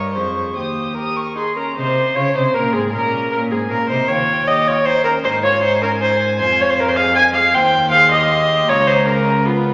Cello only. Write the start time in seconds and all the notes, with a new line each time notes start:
Already playing: G2
0.16 F2
0.55 D#2
1.76 C3
2.16 C#3
2.36 C3
2.55 A#2
2.74 G#2
2.94 A#2
3.33 A#2
3.52 G#2
3.71 A#2
3.91 C3
4.11 D#2
5.26 G#2
6.40 F2
7.54 D#2
8.68 C#2